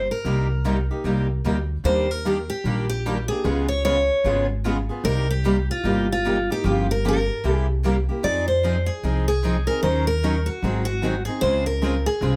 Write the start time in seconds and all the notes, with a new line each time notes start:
0.11 A#4
0.24 C2 C3 G3 A#3 D#4 G4
0.65 C3 G3 A#3 D#4 G4
0.91 A#3 D#4 G4
1.04 C2 C3 G3 A#3 D#4 G4
1.44 D2 C3 G3 A#3 D#4 G4
1.84 D#2 D#3 G3 A#3 D4 G4 C5
2.11 A#4
2.25 D#3 G3 A#3 D4 G4
2.50 G4
2.64 A#1 D#3 G3 A#3 D4 G4
2.89 G4
3.06 D#3 G3 A#3 D4 G4
3.28 A#3 D4 G4 G#4
3.44 C#2 C#3 G#3 B3 F4 G#4
3.68 C#5
3.85 C#3 G#3 B3 F4 G#4 C#5
4.24 G#1 C#3 G#3 B3 F4 G#4
4.65 C#3 G#3 B3 F4 G#4
4.89 B3 F4 G#4
5.04 C2 C3 G3 A#3 D#4 G4 A#4
5.31 G4
5.45 C3 G3 A#3 D#4 G4
5.71 F4
5.83 G1 C3 G3 A#3 D#4 G4
6.12 F4
6.26 C3 G3 A#3 D#4 G4
6.50 A#3 D#4 G4
6.64 G1 C#3 F3 A#3 F4 G4
6.91 A#4
7.05 C#3 F3 A#3 F4 G4 A#4
7.44 C2 C3 G3 A#3 E4 G4
7.53 G#4
7.85 C3 G3 A#3 E4 G4
8.09 A#3 E4 G4
8.23 F2 F3 C4 D#4 G#4 D5
8.48 C5
8.64 F3 C4 D#4 G#4
8.86 G#4
9.03 C2 F3 C4 D#4 G#4
9.28 G#4
9.45 F3 C4 D#4 G#4
9.67 C4 D#4 G#4 A#4
9.83 D#2 D#3 F#3 C#4 D#4 A#4 C5
10.07 A#4
10.24 D#3 F#3 C#4 D#4 A#4
10.46 F#4
10.62 G#1 D#3 F#3 C4 D#4 G#4
10.85 F#4
11.02 D#3 F#3 C4 D#4 G#4
11.25 D#4 G#4
11.29 C4
11.41 C#2 C#3 G#3 C4 F4 G#4 C5
11.66 A#4
11.82 C#3 G#3 C4 F4 G#4
12.06 G#4
12.21 C2 C#3 G#3 C4 F4 G#4